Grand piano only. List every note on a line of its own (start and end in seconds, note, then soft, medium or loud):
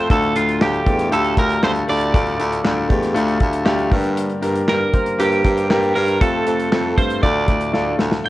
0.00 0.12 C3 medium
0.00 0.10 A3 loud
0.00 0.12 C4 medium
0.00 0.11 F4 medium
0.00 0.11 A4 loud
0.10 0.83 A2 medium
0.10 0.30 A3 medium
0.10 0.30 D4 medium
0.10 0.30 F4 medium
0.10 0.30 A4 loud
0.35 0.55 A3 medium
0.35 0.55 D4 medium
0.35 0.55 F4 medium
0.35 0.55 A4 medium
0.61 0.80 A3 medium
0.61 0.81 D4 medium
0.61 0.81 F4 medium
0.61 0.81 G4 medium
0.86 1.06 A3 medium
0.86 1.06 D4 medium
0.86 1.06 F4 medium
0.86 1.06 A4 medium
1.11 1.31 A3 medium
1.11 1.31 D4 medium
1.11 1.31 F4 medium
1.11 1.32 G4 loud
1.37 1.57 A3 medium
1.37 1.57 D4 medium
1.37 1.57 F4 medium
1.37 1.57 A4 medium
1.62 1.82 A3 medium
1.62 1.82 D4 medium
1.62 1.82 F4 medium
1.62 1.83 A4 loud
1.88 2.08 A3 medium
1.88 2.08 D4 medium
1.88 2.08 F4 medium
1.88 2.08 A4 medium
2.13 2.86 A2 medium
2.13 2.33 A3 medium
2.13 2.33 D4 medium
2.13 2.33 F4 medium
2.13 2.34 A4 loud
2.38 2.58 A3 medium
2.38 2.59 D4 medium
2.38 2.59 F4 medium
2.38 2.59 A4 medium
2.64 2.84 A3 medium
2.64 2.84 D4 medium
2.64 2.84 F4 medium
2.64 2.84 A4 medium
2.89 3.09 A3 medium
2.89 3.09 D4 medium
2.89 3.09 F4 medium
2.89 3.09 G4 medium
3.15 3.35 A3 loud
3.15 3.35 D4 loud
3.15 3.35 F4 loud
3.15 3.35 A4 loud
3.40 3.60 A3 medium
3.40 3.60 D4 medium
3.40 3.60 F4 medium
3.40 3.60 A4 medium
3.65 3.85 A3 loud
3.65 3.85 D4 loud
3.65 3.86 F4 loud
3.65 3.86 G4 loud
3.91 4.64 G2 medium
3.91 4.64 D3 medium
3.91 4.32 A#3 medium
3.91 4.32 D4 medium
3.91 4.32 G4 medium
3.91 4.32 A#4 medium
4.41 4.62 A#3 medium
4.41 4.62 D4 medium
4.41 4.62 G4 medium
4.41 4.62 A#4 medium
4.68 4.87 A#3 medium
4.68 4.88 D4 medium
4.68 4.88 G4 medium
4.68 4.88 A#4 medium
4.93 5.13 A#3 medium
4.93 5.13 D4 medium
4.93 5.13 G4 medium
4.93 5.13 C5 medium
5.19 5.38 A#3 loud
5.19 5.39 D4 medium
5.19 5.39 G4 medium
5.19 5.39 A#4 loud
5.43 5.63 A#3 medium
5.43 5.64 D4 medium
5.43 5.64 G4 medium
5.43 5.64 A#4 medium
5.70 5.89 A#3 loud
5.70 5.90 D4 medium
5.70 5.90 G4 loud
5.70 5.90 A#4 loud
5.95 6.15 A#3 medium
5.95 6.15 D4 medium
5.95 6.15 G4 medium
5.95 6.15 A#4 medium
6.21 6.93 C3 medium
6.21 6.40 A3 medium
6.21 6.41 C4 medium
6.21 6.41 F4 medium
6.21 6.41 A4 medium
6.46 6.66 A3 medium
6.46 6.66 C4 medium
6.46 6.66 F4 medium
6.46 6.66 A4 medium
6.71 6.91 A3 medium
6.71 6.91 C4 medium
6.71 6.91 F4 medium
6.71 6.92 A4 medium
6.97 7.17 A3 medium
6.97 7.17 C4 medium
6.97 7.17 F4 medium
6.97 7.17 A4 medium
7.22 7.95 A2 medium
7.22 7.42 A3 medium
7.22 7.42 D4 medium
7.22 7.42 F4 medium
7.22 7.42 A4 loud
7.47 7.67 A3 medium
7.47 7.68 D4 medium
7.47 7.68 F4 medium
7.47 7.68 A4 medium
7.73 7.93 A3 loud
7.73 7.93 D4 medium
7.73 7.93 F4 medium
7.73 7.93 A4 loud
7.98 8.18 A3 medium
7.98 8.19 D4 medium
7.98 8.19 F4 medium
7.98 8.19 A4 medium
8.24 8.29 A#2 soft
8.24 8.29 F3 soft
8.24 8.29 A#3 medium
8.24 8.29 D4 medium
8.24 8.29 F4 medium
8.24 8.29 A#4 medium